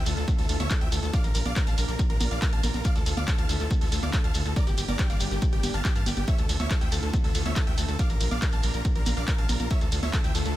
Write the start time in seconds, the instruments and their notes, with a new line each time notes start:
Already playing: analog synth pad D3 A3 E4 F4
0.06 analog synth bass D2, supersaw synth A4, grand piano A4, open hi-hat, ride, shekere
0.17 analog synth bass D2, supersaw synth A4, grand piano A4, closed hi-hat, shekere
0.28 kick, closed hi-hat, high conga, shekere
0.38 analog synth bass D2, supersaw synth A4, grand piano A4, open hi-hat
0.49 analog synth bass D2, supersaw synth A4, grand piano A4, open hi-hat, ride, shekere
0.60 analog synth bass D2, supersaw synth C#5 E5, grand piano E5, closed hi-hat, high conga, shekere
0.70 supersaw synth A4, grand piano A4, kick, clap, closed hi-hat, shekere
0.81 analog synth bass D2, supersaw synth E5 G5, grand piano G5, closed hi-hat
0.92 analog synth bass D2, supersaw synth A4, grand piano A4, open hi-hat, ride, shekere
1.03 analog synth bass D2, supersaw synth A4, grand piano A4, closed hi-hat, shekere
1.13 analog synth pad A#3 D4 F4, supersaw synth D5 F5, grand piano F5, kick, closed hi-hat, shekere
1.24 analog synth bass A#1, supersaw synth A#4, grand piano A#4, closed hi-hat, shekere
1.35 analog synth bass A#1, supersaw synth A#4, grand piano A#4, open hi-hat, ride, shekere
1.45 analog synth bass A#1, supersaw synth D5 F5, grand piano F5, closed hi-hat, high conga, shekere
1.56 supersaw synth A#4, grand piano A#4, kick, clap, closed hi-hat, shekere
1.67 analog synth bass A#1, supersaw synth F5 A5, grand piano A5, closed hi-hat, shekere
1.78 analog synth bass A#1, supersaw synth A#4, grand piano A#4, open hi-hat, ride, shekere
1.88 analog synth bass A#1, supersaw synth A#4, grand piano A#4, closed hi-hat, shekere
1.99 kick, closed hi-hat, shekere
2.10 analog synth bass A#1, supersaw synth A#4, grand piano A#4, closed hi-hat
2.20 analog synth bass A#1, supersaw synth A#4, grand piano A#4, open hi-hat, ride, high conga, shekere
2.31 analog synth bass A#1, supersaw synth D5 F5, grand piano F5, closed hi-hat, shekere
2.42 supersaw synth A#4, grand piano A#4, kick, clap, closed hi-hat, shekere
2.53 analog synth bass A#1, supersaw synth F5 A5, grand piano A5, closed hi-hat
2.63 analog synth bass A#1, supersaw synth A#4, grand piano A#4, open hi-hat, ride, high conga, shekere
2.74 analog synth bass A#1, supersaw synth A#4, closed hi-hat, high conga, shekere
2.84 analog synth pad D3 A3 E4, supersaw synth D5 F5, grand piano F5, kick, closed hi-hat, shekere
2.96 analog synth bass D2, grand piano A4, supersaw synth A4, closed hi-hat, shekere
3.06 analog synth bass D2, supersaw synth A4, grand piano A4, open hi-hat, ride, shekere
3.17 analog synth bass D2, supersaw synth D5 F5, grand piano F5, closed hi-hat, high conga, shekere
3.28 grand piano A4, supersaw synth A4, kick, clap, closed hi-hat, shekere
3.38 analog synth bass D2, supersaw synth F5 A5, grand piano A5, closed hi-hat, shekere
3.49 analog synth bass D2, grand piano A4, supersaw synth A4, open hi-hat, ride, shekere
3.60 analog synth bass D2, supersaw synth A4, grand piano A4, closed hi-hat, shekere
3.71 kick, closed hi-hat, high conga, shekere
3.81 analog synth bass D2, grand piano A4, supersaw synth A4, open hi-hat
3.92 analog synth bass D2, grand piano A4, supersaw synth A4, open hi-hat, ride, shekere
4.03 analog synth bass D2, supersaw synth D5 F5, grand piano F5, closed hi-hat, high conga, shekere
4.13 grand piano A4, supersaw synth A4, kick, clap, closed hi-hat, shekere
4.24 analog synth bass D2, supersaw synth F5 A5, grand piano A5, closed hi-hat
4.34 analog synth bass D2, supersaw synth A4, grand piano A4, open hi-hat, ride, shekere
4.45 analog synth bass D2, supersaw synth A4, grand piano A4, closed hi-hat, shekere
4.56 analog synth pad G3 A#3 D4, supersaw synth A#4 D5, grand piano D5, kick, closed hi-hat, shekere
4.67 analog synth bass G1, grand piano G4, supersaw synth G4, closed hi-hat, shekere
4.78 analog synth bass G1, grand piano G4, supersaw synth G4, open hi-hat, ride, shekere
4.88 analog synth bass G1, supersaw synth A#4 D5, grand piano D5, closed hi-hat, high conga, shekere
4.98 grand piano G4, supersaw synth G4, kick, clap, closed hi-hat, shekere
5.10 analog synth bass G1, supersaw synth D5 F5, grand piano F5, closed hi-hat, shekere
5.20 analog synth bass G1, supersaw synth G4, grand piano G4, open hi-hat, ride, shekere
5.31 analog synth bass G1, supersaw synth G4, grand piano G4, closed hi-hat, shekere
5.42 kick, closed hi-hat, shekere
5.53 analog synth bass G1, supersaw synth G4, grand piano G4, closed hi-hat
5.63 analog synth bass G1, supersaw synth G4, grand piano G4, open hi-hat, ride, high conga, shekere
5.73 analog synth bass G1, supersaw synth F5 A5, grand piano A5, closed hi-hat, shekere
5.85 supersaw synth G4, grand piano G4, kick, clap, closed hi-hat, shekere
5.95 analog synth bass G2, supersaw synth F5 A5, grand piano A5, closed hi-hat, shekere
6.06 analog synth bass G1, supersaw synth G4, grand piano G4, open hi-hat, ride, high conga, shekere
6.16 analog synth bass G1, supersaw synth G4, grand piano G4, closed hi-hat, high conga, shekere
6.27 analog synth pad D3 A3 E4 F4, supersaw synth C#5 E5, grand piano E5, kick, closed hi-hat, shekere
6.38 analog synth bass D2, grand piano A4, supersaw synth A4, closed hi-hat, shekere
6.49 analog synth bass D2, supersaw synth A4, grand piano A4, open hi-hat, ride, shekere
6.60 analog synth bass D2, supersaw synth C#5 E5, grand piano E5, closed hi-hat, high conga, shekere
6.71 supersaw synth A4, grand piano A4, kick, clap, closed hi-hat, shekere
6.81 analog synth bass D2, supersaw synth E5 G5, grand piano G5, closed hi-hat, shekere
6.92 analog synth bass D2, supersaw synth A4, grand piano A4, open hi-hat, ride, shekere
7.02 analog synth bass D2, grand piano A4, supersaw synth A4, closed hi-hat, shekere
7.13 kick, closed hi-hat, high conga, shekere
7.24 analog synth bass D2, supersaw synth A4, grand piano A4, open hi-hat
7.35 analog synth bass D2, supersaw synth A4, grand piano A4, open hi-hat, ride, shekere
7.45 analog synth bass D2, supersaw synth C#5 E5, grand piano E5, closed hi-hat, high conga, shekere
7.55 grand piano A4, supersaw synth A4, kick, clap, closed hi-hat, shekere
7.67 analog synth bass D2, supersaw synth E5 G5, grand piano G5, closed hi-hat
7.78 analog synth bass D2, supersaw synth A4, grand piano A4, open hi-hat, ride, shekere
7.88 analog synth bass D2, supersaw synth A4, grand piano A4, closed hi-hat, shekere
7.99 analog synth pad A#3 D4 F4, supersaw synth D5 F5, grand piano F5, kick, closed hi-hat, shekere
8.10 analog synth bass A#1, grand piano A#4, supersaw synth A#4, closed hi-hat, shekere
8.20 analog synth bass A#1, grand piano A#4, supersaw synth A#4, open hi-hat, ride, shekere
8.31 analog synth bass A#1, supersaw synth D5 F5, grand piano F5, closed hi-hat, high conga, shekere
8.42 grand piano A#4, supersaw synth A#4, kick, clap, closed hi-hat, shekere
8.52 analog synth bass A#1, supersaw synth F5 A5, grand piano A5, closed hi-hat, shekere
8.63 analog synth bass A#1, grand piano A#4, supersaw synth A#4, open hi-hat, ride, shekere
8.74 analog synth bass A#1, grand piano A#4, supersaw synth A#4, closed hi-hat, shekere
8.85 kick, closed hi-hat, shekere
8.96 analog synth bass A#1, grand piano A#4, supersaw synth A#4, closed hi-hat
9.06 analog synth bass A#1, grand piano A#4, supersaw synth A#4, open hi-hat, ride, high conga, shekere
9.16 analog synth bass A#1, supersaw synth D5 F5, grand piano F5, closed hi-hat, shekere
9.28 grand piano A#4, supersaw synth A#4, kick, clap, closed hi-hat, shekere
9.38 analog synth bass A#1, supersaw synth F5 A5, grand piano A5, closed hi-hat
9.49 analog synth bass A#1, grand piano A#4, supersaw synth A#4, open hi-hat, ride, high conga, shekere
9.59 analog synth bass A#1, grand piano A#4, supersaw synth A#4, closed hi-hat, high conga, shekere
9.70 analog synth pad D3 A3 E4, supersaw synth C#5 E5, grand piano E5, kick, closed hi-hat, shekere
9.81 analog synth bass D2, grand piano A4, supersaw synth A4, closed hi-hat, shekere
9.92 analog synth bass D2, grand piano A4, supersaw synth A4, open hi-hat, ride, shekere
10.02 analog synth bass D2, supersaw synth C#5 E5, grand piano E5, closed hi-hat, high conga, shekere
10.13 grand piano A4, supersaw synth A4, kick, clap, closed hi-hat, shekere
10.24 analog synth bass D2, supersaw synth E5 G5, grand piano G5, closed hi-hat, shekere
10.35 analog synth bass D2, grand piano A4, supersaw synth A4, open hi-hat, ride, shekere
10.45 analog synth bass D2, grand piano A4, supersaw synth A4, closed hi-hat, shekere